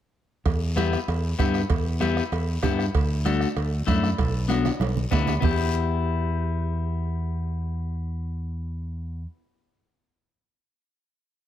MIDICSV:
0, 0, Header, 1, 5, 480
1, 0, Start_track
1, 0, Key_signature, 1, "minor"
1, 0, Tempo, 310078
1, 711, Time_signature, 4, 2, 24, 8
1, 17759, End_track
2, 0, Start_track
2, 0, Title_t, "Clean electric guitar"
2, 0, Program_c, 0, 27
2, 1178, Note_on_c, 0, 59, 84
2, 1188, Note_on_c, 0, 64, 68
2, 1196, Note_on_c, 0, 67, 95
2, 1522, Note_off_c, 0, 59, 0
2, 1523, Note_off_c, 0, 64, 0
2, 1529, Note_off_c, 0, 67, 0
2, 2146, Note_on_c, 0, 59, 85
2, 2151, Note_on_c, 0, 64, 58
2, 2154, Note_on_c, 0, 67, 88
2, 2484, Note_off_c, 0, 64, 0
2, 2485, Note_off_c, 0, 59, 0
2, 2488, Note_off_c, 0, 67, 0
2, 3101, Note_on_c, 0, 59, 89
2, 3107, Note_on_c, 0, 64, 78
2, 3115, Note_on_c, 0, 67, 100
2, 3442, Note_off_c, 0, 59, 0
2, 3446, Note_off_c, 0, 64, 0
2, 3449, Note_off_c, 0, 67, 0
2, 4067, Note_on_c, 0, 59, 84
2, 4072, Note_on_c, 0, 67, 90
2, 4079, Note_on_c, 0, 64, 69
2, 4406, Note_off_c, 0, 59, 0
2, 4409, Note_off_c, 0, 64, 0
2, 4409, Note_off_c, 0, 67, 0
2, 5034, Note_on_c, 0, 57, 85
2, 5039, Note_on_c, 0, 62, 79
2, 5050, Note_on_c, 0, 66, 87
2, 5371, Note_off_c, 0, 57, 0
2, 5374, Note_off_c, 0, 62, 0
2, 5376, Note_off_c, 0, 66, 0
2, 5986, Note_on_c, 0, 57, 81
2, 5994, Note_on_c, 0, 62, 61
2, 5994, Note_on_c, 0, 64, 87
2, 6328, Note_off_c, 0, 57, 0
2, 6330, Note_off_c, 0, 62, 0
2, 6332, Note_off_c, 0, 64, 0
2, 6941, Note_on_c, 0, 59, 86
2, 6948, Note_on_c, 0, 62, 74
2, 6954, Note_on_c, 0, 66, 90
2, 7286, Note_off_c, 0, 59, 0
2, 7290, Note_off_c, 0, 62, 0
2, 7293, Note_off_c, 0, 66, 0
2, 7912, Note_on_c, 0, 59, 79
2, 7915, Note_on_c, 0, 62, 67
2, 7931, Note_on_c, 0, 64, 80
2, 8252, Note_off_c, 0, 59, 0
2, 8256, Note_off_c, 0, 62, 0
2, 8259, Note_off_c, 0, 64, 0
2, 8366, Note_on_c, 0, 59, 73
2, 8393, Note_on_c, 0, 64, 69
2, 8425, Note_on_c, 0, 67, 83
2, 14273, Note_off_c, 0, 59, 0
2, 14300, Note_off_c, 0, 64, 0
2, 14332, Note_off_c, 0, 67, 0
2, 17759, End_track
3, 0, Start_track
3, 0, Title_t, "Fingered electric bass"
3, 0, Program_c, 1, 33
3, 707, Note_on_c, 1, 40, 95
3, 1476, Note_off_c, 1, 40, 0
3, 1674, Note_on_c, 1, 40, 92
3, 2057, Note_off_c, 1, 40, 0
3, 2156, Note_on_c, 1, 43, 91
3, 2538, Note_off_c, 1, 43, 0
3, 2633, Note_on_c, 1, 40, 96
3, 3401, Note_off_c, 1, 40, 0
3, 3593, Note_on_c, 1, 40, 88
3, 3977, Note_off_c, 1, 40, 0
3, 4077, Note_on_c, 1, 43, 93
3, 4460, Note_off_c, 1, 43, 0
3, 4561, Note_on_c, 1, 38, 94
3, 5328, Note_off_c, 1, 38, 0
3, 5518, Note_on_c, 1, 38, 92
3, 5902, Note_off_c, 1, 38, 0
3, 5997, Note_on_c, 1, 42, 93
3, 6382, Note_off_c, 1, 42, 0
3, 6488, Note_on_c, 1, 35, 97
3, 7253, Note_off_c, 1, 35, 0
3, 7426, Note_on_c, 1, 35, 87
3, 7816, Note_off_c, 1, 35, 0
3, 7935, Note_on_c, 1, 38, 94
3, 8313, Note_off_c, 1, 38, 0
3, 8416, Note_on_c, 1, 40, 89
3, 14323, Note_off_c, 1, 40, 0
3, 17759, End_track
4, 0, Start_track
4, 0, Title_t, "Two-headed folk drums"
4, 710, Note_on_c, 9, 36, 79
4, 712, Note_on_c, 9, 37, 79
4, 864, Note_off_c, 9, 36, 0
4, 867, Note_off_c, 9, 37, 0
4, 1196, Note_on_c, 9, 37, 80
4, 1350, Note_off_c, 9, 37, 0
4, 1443, Note_on_c, 9, 37, 82
4, 1598, Note_off_c, 9, 37, 0
4, 1682, Note_on_c, 9, 37, 80
4, 1837, Note_off_c, 9, 37, 0
4, 2155, Note_on_c, 9, 36, 81
4, 2161, Note_on_c, 9, 37, 83
4, 2310, Note_off_c, 9, 36, 0
4, 2316, Note_off_c, 9, 37, 0
4, 2394, Note_on_c, 9, 37, 81
4, 2549, Note_off_c, 9, 37, 0
4, 2630, Note_on_c, 9, 37, 82
4, 2633, Note_on_c, 9, 36, 85
4, 2785, Note_off_c, 9, 37, 0
4, 2788, Note_off_c, 9, 36, 0
4, 3108, Note_on_c, 9, 37, 79
4, 3263, Note_off_c, 9, 37, 0
4, 3357, Note_on_c, 9, 37, 89
4, 3512, Note_off_c, 9, 37, 0
4, 3600, Note_on_c, 9, 37, 86
4, 3755, Note_off_c, 9, 37, 0
4, 4066, Note_on_c, 9, 37, 89
4, 4075, Note_on_c, 9, 36, 79
4, 4221, Note_off_c, 9, 37, 0
4, 4230, Note_off_c, 9, 36, 0
4, 4320, Note_on_c, 9, 37, 84
4, 4474, Note_off_c, 9, 37, 0
4, 4562, Note_on_c, 9, 37, 85
4, 4564, Note_on_c, 9, 36, 78
4, 4717, Note_off_c, 9, 37, 0
4, 4718, Note_off_c, 9, 36, 0
4, 5041, Note_on_c, 9, 37, 80
4, 5196, Note_off_c, 9, 37, 0
4, 5271, Note_on_c, 9, 37, 83
4, 5426, Note_off_c, 9, 37, 0
4, 5520, Note_on_c, 9, 37, 83
4, 5674, Note_off_c, 9, 37, 0
4, 6003, Note_on_c, 9, 36, 81
4, 6007, Note_on_c, 9, 37, 81
4, 6157, Note_off_c, 9, 36, 0
4, 6161, Note_off_c, 9, 37, 0
4, 6246, Note_on_c, 9, 37, 78
4, 6401, Note_off_c, 9, 37, 0
4, 6483, Note_on_c, 9, 36, 83
4, 6489, Note_on_c, 9, 37, 83
4, 6638, Note_off_c, 9, 36, 0
4, 6643, Note_off_c, 9, 37, 0
4, 6969, Note_on_c, 9, 37, 82
4, 7124, Note_off_c, 9, 37, 0
4, 7206, Note_on_c, 9, 37, 92
4, 7361, Note_off_c, 9, 37, 0
4, 7443, Note_on_c, 9, 37, 83
4, 7597, Note_off_c, 9, 37, 0
4, 7932, Note_on_c, 9, 36, 86
4, 7932, Note_on_c, 9, 37, 85
4, 8087, Note_off_c, 9, 36, 0
4, 8087, Note_off_c, 9, 37, 0
4, 8185, Note_on_c, 9, 37, 88
4, 8340, Note_off_c, 9, 37, 0
4, 8415, Note_on_c, 9, 36, 93
4, 8570, Note_off_c, 9, 36, 0
4, 17759, End_track
5, 0, Start_track
5, 0, Title_t, "Drums"
5, 705, Note_on_c, 9, 56, 95
5, 711, Note_on_c, 9, 74, 73
5, 714, Note_on_c, 9, 63, 34
5, 860, Note_off_c, 9, 56, 0
5, 865, Note_off_c, 9, 74, 0
5, 869, Note_off_c, 9, 63, 0
5, 1195, Note_on_c, 9, 73, 66
5, 1204, Note_on_c, 9, 63, 81
5, 1205, Note_on_c, 9, 56, 73
5, 1350, Note_off_c, 9, 73, 0
5, 1359, Note_off_c, 9, 63, 0
5, 1360, Note_off_c, 9, 56, 0
5, 1440, Note_on_c, 9, 73, 66
5, 1595, Note_off_c, 9, 73, 0
5, 1677, Note_on_c, 9, 74, 72
5, 1678, Note_on_c, 9, 56, 82
5, 1685, Note_on_c, 9, 63, 33
5, 1832, Note_off_c, 9, 74, 0
5, 1833, Note_off_c, 9, 56, 0
5, 1840, Note_off_c, 9, 63, 0
5, 2159, Note_on_c, 9, 73, 69
5, 2162, Note_on_c, 9, 63, 77
5, 2166, Note_on_c, 9, 56, 65
5, 2313, Note_off_c, 9, 73, 0
5, 2317, Note_off_c, 9, 63, 0
5, 2321, Note_off_c, 9, 56, 0
5, 2388, Note_on_c, 9, 73, 67
5, 2543, Note_off_c, 9, 73, 0
5, 2626, Note_on_c, 9, 56, 104
5, 2637, Note_on_c, 9, 74, 76
5, 2639, Note_on_c, 9, 63, 33
5, 2781, Note_off_c, 9, 56, 0
5, 2791, Note_off_c, 9, 74, 0
5, 2794, Note_off_c, 9, 63, 0
5, 3110, Note_on_c, 9, 73, 65
5, 3120, Note_on_c, 9, 63, 84
5, 3132, Note_on_c, 9, 56, 74
5, 3264, Note_off_c, 9, 73, 0
5, 3275, Note_off_c, 9, 63, 0
5, 3287, Note_off_c, 9, 56, 0
5, 3362, Note_on_c, 9, 73, 67
5, 3517, Note_off_c, 9, 73, 0
5, 3594, Note_on_c, 9, 74, 73
5, 3605, Note_on_c, 9, 56, 85
5, 3613, Note_on_c, 9, 63, 36
5, 3749, Note_off_c, 9, 74, 0
5, 3760, Note_off_c, 9, 56, 0
5, 3768, Note_off_c, 9, 63, 0
5, 4072, Note_on_c, 9, 56, 65
5, 4072, Note_on_c, 9, 66, 69
5, 4089, Note_on_c, 9, 73, 69
5, 4090, Note_on_c, 9, 63, 76
5, 4090, Note_on_c, 9, 64, 75
5, 4227, Note_off_c, 9, 56, 0
5, 4227, Note_off_c, 9, 66, 0
5, 4244, Note_off_c, 9, 73, 0
5, 4245, Note_off_c, 9, 63, 0
5, 4245, Note_off_c, 9, 64, 0
5, 4333, Note_on_c, 9, 73, 72
5, 4488, Note_off_c, 9, 73, 0
5, 4560, Note_on_c, 9, 56, 100
5, 4575, Note_on_c, 9, 74, 77
5, 4576, Note_on_c, 9, 63, 33
5, 4715, Note_off_c, 9, 56, 0
5, 4730, Note_off_c, 9, 74, 0
5, 4731, Note_off_c, 9, 63, 0
5, 5049, Note_on_c, 9, 73, 66
5, 5051, Note_on_c, 9, 56, 72
5, 5051, Note_on_c, 9, 63, 83
5, 5204, Note_off_c, 9, 73, 0
5, 5206, Note_off_c, 9, 56, 0
5, 5206, Note_off_c, 9, 63, 0
5, 5287, Note_on_c, 9, 73, 70
5, 5442, Note_off_c, 9, 73, 0
5, 5520, Note_on_c, 9, 56, 84
5, 5520, Note_on_c, 9, 74, 74
5, 5533, Note_on_c, 9, 63, 35
5, 5674, Note_off_c, 9, 74, 0
5, 5675, Note_off_c, 9, 56, 0
5, 5688, Note_off_c, 9, 63, 0
5, 5993, Note_on_c, 9, 73, 70
5, 6009, Note_on_c, 9, 56, 68
5, 6015, Note_on_c, 9, 63, 76
5, 6148, Note_off_c, 9, 73, 0
5, 6164, Note_off_c, 9, 56, 0
5, 6170, Note_off_c, 9, 63, 0
5, 6252, Note_on_c, 9, 73, 68
5, 6407, Note_off_c, 9, 73, 0
5, 6477, Note_on_c, 9, 56, 100
5, 6492, Note_on_c, 9, 74, 76
5, 6499, Note_on_c, 9, 63, 32
5, 6632, Note_off_c, 9, 56, 0
5, 6646, Note_off_c, 9, 74, 0
5, 6654, Note_off_c, 9, 63, 0
5, 6963, Note_on_c, 9, 73, 68
5, 6965, Note_on_c, 9, 63, 78
5, 6980, Note_on_c, 9, 56, 69
5, 7118, Note_off_c, 9, 73, 0
5, 7120, Note_off_c, 9, 63, 0
5, 7135, Note_off_c, 9, 56, 0
5, 7201, Note_on_c, 9, 73, 66
5, 7210, Note_on_c, 9, 64, 71
5, 7227, Note_on_c, 9, 65, 84
5, 7356, Note_off_c, 9, 73, 0
5, 7364, Note_off_c, 9, 64, 0
5, 7381, Note_off_c, 9, 65, 0
5, 7445, Note_on_c, 9, 74, 76
5, 7446, Note_on_c, 9, 63, 81
5, 7462, Note_on_c, 9, 56, 84
5, 7462, Note_on_c, 9, 65, 73
5, 7600, Note_off_c, 9, 74, 0
5, 7601, Note_off_c, 9, 63, 0
5, 7617, Note_off_c, 9, 56, 0
5, 7617, Note_off_c, 9, 65, 0
5, 7692, Note_on_c, 9, 64, 75
5, 7847, Note_off_c, 9, 64, 0
5, 7920, Note_on_c, 9, 64, 84
5, 7937, Note_on_c, 9, 73, 71
5, 7941, Note_on_c, 9, 56, 68
5, 7941, Note_on_c, 9, 66, 83
5, 8075, Note_off_c, 9, 64, 0
5, 8091, Note_off_c, 9, 73, 0
5, 8096, Note_off_c, 9, 56, 0
5, 8096, Note_off_c, 9, 66, 0
5, 8162, Note_on_c, 9, 64, 84
5, 8171, Note_on_c, 9, 73, 68
5, 8176, Note_on_c, 9, 66, 75
5, 8317, Note_off_c, 9, 64, 0
5, 8326, Note_off_c, 9, 73, 0
5, 8330, Note_off_c, 9, 66, 0
5, 8393, Note_on_c, 9, 64, 93
5, 8408, Note_on_c, 9, 74, 107
5, 8412, Note_on_c, 9, 66, 94
5, 8548, Note_off_c, 9, 64, 0
5, 8563, Note_off_c, 9, 74, 0
5, 8567, Note_off_c, 9, 66, 0
5, 17759, End_track
0, 0, End_of_file